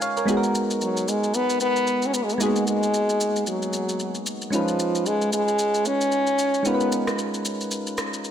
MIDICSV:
0, 0, Header, 1, 4, 480
1, 0, Start_track
1, 0, Tempo, 530973
1, 254, Time_signature, 4, 2, 24, 8
1, 7511, End_track
2, 0, Start_track
2, 0, Title_t, "Synth keys"
2, 0, Program_c, 0, 88
2, 0, Control_c, 0, 64, 127
2, 0, Note_on_c, 0, 56, 63
2, 0, Note_on_c, 0, 61, 58
2, 0, Note_on_c, 0, 63, 56
2, 0, Note_on_c, 0, 65, 57
2, 0, Note_on_c, 0, 70, 69
2, 0, Note_on_c, 0, 77, 54
2, 0, Note_on_c, 0, 80, 63
2, 13, Note_off_c, 0, 77, 0
2, 13, Note_on_c, 0, 77, 67
2, 19, Note_on_c, 0, 73, 56
2, 140, Note_off_c, 0, 73, 0
2, 146, Note_off_c, 0, 77, 0
2, 151, Note_on_c, 0, 73, 63
2, 157, Note_off_c, 0, 70, 0
2, 157, Note_on_c, 0, 70, 53
2, 206, Note_off_c, 0, 56, 0
2, 212, Note_off_c, 0, 61, 0
2, 218, Note_off_c, 0, 63, 0
2, 223, Note_off_c, 0, 65, 0
2, 230, Note_on_c, 0, 56, 75
2, 241, Note_on_c, 0, 59, 69
2, 253, Note_on_c, 0, 63, 66
2, 265, Control_c, 0, 64, 0
2, 265, Note_on_c, 0, 66, 69
2, 273, Note_off_c, 0, 80, 0
2, 276, Note_on_c, 0, 68, 66
2, 323, Note_off_c, 0, 70, 0
2, 332, Note_off_c, 0, 68, 0
2, 334, Note_on_c, 0, 70, 84
2, 380, Note_off_c, 0, 73, 0
2, 436, Control_c, 0, 64, 127
2, 2126, Note_off_c, 0, 56, 0
2, 2131, Note_off_c, 0, 59, 0
2, 2137, Note_off_c, 0, 63, 0
2, 2143, Note_off_c, 0, 66, 0
2, 2152, Note_on_c, 0, 56, 61
2, 2164, Note_on_c, 0, 58, 47
2, 2175, Note_on_c, 0, 63, 56
2, 2177, Note_off_c, 0, 70, 0
2, 2187, Note_on_c, 0, 66, 60
2, 2198, Note_on_c, 0, 68, 69
2, 2221, Note_on_c, 0, 59, 56
2, 2236, Note_off_c, 0, 58, 0
2, 4047, Note_off_c, 0, 56, 0
2, 4058, Note_off_c, 0, 63, 0
2, 4064, Note_off_c, 0, 66, 0
2, 4070, Note_off_c, 0, 68, 0
2, 4072, Note_on_c, 0, 56, 63
2, 4081, Note_off_c, 0, 59, 0
2, 4084, Note_on_c, 0, 61, 58
2, 4095, Note_on_c, 0, 63, 57
2, 4104, Control_c, 0, 64, 0
2, 4108, Note_on_c, 0, 65, 57
2, 4118, Note_on_c, 0, 71, 65
2, 4278, Control_c, 0, 64, 127
2, 5967, Note_off_c, 0, 56, 0
2, 5973, Note_off_c, 0, 61, 0
2, 5978, Note_off_c, 0, 63, 0
2, 5985, Note_off_c, 0, 65, 0
2, 5990, Note_off_c, 0, 71, 0
2, 5993, Note_on_c, 0, 56, 63
2, 6004, Note_on_c, 0, 61, 57
2, 6016, Note_on_c, 0, 63, 60
2, 6028, Note_on_c, 0, 65, 58
2, 6039, Note_on_c, 0, 70, 53
2, 6093, Note_off_c, 0, 70, 0
2, 6097, Note_on_c, 0, 71, 68
2, 7511, Note_off_c, 0, 56, 0
2, 7511, Note_off_c, 0, 61, 0
2, 7511, Note_off_c, 0, 63, 0
2, 7511, Note_off_c, 0, 65, 0
2, 7511, Note_off_c, 0, 71, 0
2, 7511, End_track
3, 0, Start_track
3, 0, Title_t, "French horn"
3, 0, Program_c, 1, 60
3, 742, Note_on_c, 1, 54, 89
3, 983, Note_on_c, 1, 56, 92
3, 997, Note_off_c, 1, 54, 0
3, 1223, Note_on_c, 1, 59, 103
3, 1236, Note_off_c, 1, 56, 0
3, 1456, Note_off_c, 1, 59, 0
3, 1461, Note_on_c, 1, 59, 110
3, 1867, Note_on_c, 1, 61, 92
3, 1880, Note_off_c, 1, 59, 0
3, 1935, Note_on_c, 1, 59, 89
3, 1949, Note_off_c, 1, 61, 0
3, 2029, Note_on_c, 1, 56, 85
3, 2043, Note_off_c, 1, 59, 0
3, 2113, Note_on_c, 1, 59, 85
3, 2126, Note_off_c, 1, 56, 0
3, 2183, Note_on_c, 1, 56, 96
3, 2196, Note_off_c, 1, 59, 0
3, 2416, Note_off_c, 1, 56, 0
3, 2421, Note_on_c, 1, 56, 94
3, 3101, Note_off_c, 1, 56, 0
3, 3143, Note_on_c, 1, 54, 76
3, 3822, Note_off_c, 1, 54, 0
3, 4104, Note_on_c, 1, 53, 86
3, 4584, Note_on_c, 1, 56, 90
3, 4597, Note_off_c, 1, 53, 0
3, 4819, Note_off_c, 1, 56, 0
3, 4823, Note_on_c, 1, 56, 95
3, 5303, Note_on_c, 1, 61, 109
3, 5316, Note_off_c, 1, 56, 0
3, 6022, Note_on_c, 1, 59, 94
3, 6036, Note_off_c, 1, 61, 0
3, 6498, Note_off_c, 1, 59, 0
3, 7511, End_track
4, 0, Start_track
4, 0, Title_t, "Drums"
4, 15, Note_on_c, 9, 82, 89
4, 106, Note_off_c, 9, 82, 0
4, 154, Note_on_c, 9, 82, 47
4, 245, Note_off_c, 9, 82, 0
4, 255, Note_on_c, 9, 82, 78
4, 345, Note_off_c, 9, 82, 0
4, 394, Note_on_c, 9, 82, 51
4, 485, Note_off_c, 9, 82, 0
4, 496, Note_on_c, 9, 82, 88
4, 587, Note_off_c, 9, 82, 0
4, 638, Note_on_c, 9, 82, 58
4, 728, Note_off_c, 9, 82, 0
4, 736, Note_on_c, 9, 82, 71
4, 826, Note_off_c, 9, 82, 0
4, 876, Note_on_c, 9, 82, 54
4, 967, Note_off_c, 9, 82, 0
4, 978, Note_on_c, 9, 82, 98
4, 1069, Note_off_c, 9, 82, 0
4, 1117, Note_on_c, 9, 82, 51
4, 1207, Note_off_c, 9, 82, 0
4, 1212, Note_on_c, 9, 82, 77
4, 1302, Note_off_c, 9, 82, 0
4, 1353, Note_on_c, 9, 82, 57
4, 1443, Note_off_c, 9, 82, 0
4, 1450, Note_on_c, 9, 82, 79
4, 1540, Note_off_c, 9, 82, 0
4, 1594, Note_on_c, 9, 82, 54
4, 1685, Note_off_c, 9, 82, 0
4, 1692, Note_on_c, 9, 82, 52
4, 1782, Note_off_c, 9, 82, 0
4, 1828, Note_on_c, 9, 82, 50
4, 1918, Note_off_c, 9, 82, 0
4, 1935, Note_on_c, 9, 82, 93
4, 2026, Note_off_c, 9, 82, 0
4, 2075, Note_on_c, 9, 82, 47
4, 2165, Note_off_c, 9, 82, 0
4, 2174, Note_on_c, 9, 82, 79
4, 2264, Note_off_c, 9, 82, 0
4, 2314, Note_on_c, 9, 82, 50
4, 2405, Note_off_c, 9, 82, 0
4, 2416, Note_on_c, 9, 82, 82
4, 2507, Note_off_c, 9, 82, 0
4, 2558, Note_on_c, 9, 82, 57
4, 2649, Note_off_c, 9, 82, 0
4, 2658, Note_on_c, 9, 82, 68
4, 2748, Note_off_c, 9, 82, 0
4, 2798, Note_on_c, 9, 82, 54
4, 2888, Note_off_c, 9, 82, 0
4, 2899, Note_on_c, 9, 82, 94
4, 2990, Note_off_c, 9, 82, 0
4, 3039, Note_on_c, 9, 82, 51
4, 3130, Note_off_c, 9, 82, 0
4, 3134, Note_on_c, 9, 82, 76
4, 3225, Note_off_c, 9, 82, 0
4, 3276, Note_on_c, 9, 82, 55
4, 3366, Note_off_c, 9, 82, 0
4, 3373, Note_on_c, 9, 82, 75
4, 3463, Note_off_c, 9, 82, 0
4, 3516, Note_on_c, 9, 82, 55
4, 3607, Note_off_c, 9, 82, 0
4, 3613, Note_on_c, 9, 82, 51
4, 3704, Note_off_c, 9, 82, 0
4, 3748, Note_on_c, 9, 82, 49
4, 3838, Note_off_c, 9, 82, 0
4, 3855, Note_on_c, 9, 82, 92
4, 3945, Note_off_c, 9, 82, 0
4, 3993, Note_on_c, 9, 82, 49
4, 4083, Note_off_c, 9, 82, 0
4, 4094, Note_on_c, 9, 82, 81
4, 4184, Note_off_c, 9, 82, 0
4, 4233, Note_on_c, 9, 82, 52
4, 4323, Note_off_c, 9, 82, 0
4, 4334, Note_on_c, 9, 82, 89
4, 4425, Note_off_c, 9, 82, 0
4, 4477, Note_on_c, 9, 82, 57
4, 4567, Note_off_c, 9, 82, 0
4, 4576, Note_on_c, 9, 82, 70
4, 4666, Note_off_c, 9, 82, 0
4, 4714, Note_on_c, 9, 82, 55
4, 4805, Note_off_c, 9, 82, 0
4, 4817, Note_on_c, 9, 82, 98
4, 4907, Note_off_c, 9, 82, 0
4, 4957, Note_on_c, 9, 82, 48
4, 5047, Note_off_c, 9, 82, 0
4, 5051, Note_on_c, 9, 82, 74
4, 5142, Note_off_c, 9, 82, 0
4, 5192, Note_on_c, 9, 82, 57
4, 5283, Note_off_c, 9, 82, 0
4, 5290, Note_on_c, 9, 82, 81
4, 5380, Note_off_c, 9, 82, 0
4, 5433, Note_on_c, 9, 82, 56
4, 5524, Note_off_c, 9, 82, 0
4, 5532, Note_on_c, 9, 82, 49
4, 5622, Note_off_c, 9, 82, 0
4, 5666, Note_on_c, 9, 82, 50
4, 5756, Note_off_c, 9, 82, 0
4, 5774, Note_on_c, 9, 82, 89
4, 5864, Note_off_c, 9, 82, 0
4, 5913, Note_on_c, 9, 82, 48
4, 6003, Note_off_c, 9, 82, 0
4, 6014, Note_on_c, 9, 82, 79
4, 6104, Note_off_c, 9, 82, 0
4, 6153, Note_on_c, 9, 82, 51
4, 6243, Note_off_c, 9, 82, 0
4, 6256, Note_on_c, 9, 82, 90
4, 6347, Note_off_c, 9, 82, 0
4, 6395, Note_on_c, 9, 37, 88
4, 6398, Note_on_c, 9, 82, 58
4, 6485, Note_off_c, 9, 37, 0
4, 6489, Note_off_c, 9, 82, 0
4, 6497, Note_on_c, 9, 82, 69
4, 6587, Note_off_c, 9, 82, 0
4, 6635, Note_on_c, 9, 82, 54
4, 6726, Note_off_c, 9, 82, 0
4, 6737, Note_on_c, 9, 82, 96
4, 6828, Note_off_c, 9, 82, 0
4, 6877, Note_on_c, 9, 82, 50
4, 6968, Note_off_c, 9, 82, 0
4, 6971, Note_on_c, 9, 82, 77
4, 7062, Note_off_c, 9, 82, 0
4, 7113, Note_on_c, 9, 82, 55
4, 7204, Note_off_c, 9, 82, 0
4, 7210, Note_on_c, 9, 82, 82
4, 7213, Note_on_c, 9, 37, 88
4, 7301, Note_off_c, 9, 82, 0
4, 7304, Note_off_c, 9, 37, 0
4, 7354, Note_on_c, 9, 82, 53
4, 7445, Note_off_c, 9, 82, 0
4, 7452, Note_on_c, 9, 82, 49
4, 7511, Note_off_c, 9, 82, 0
4, 7511, End_track
0, 0, End_of_file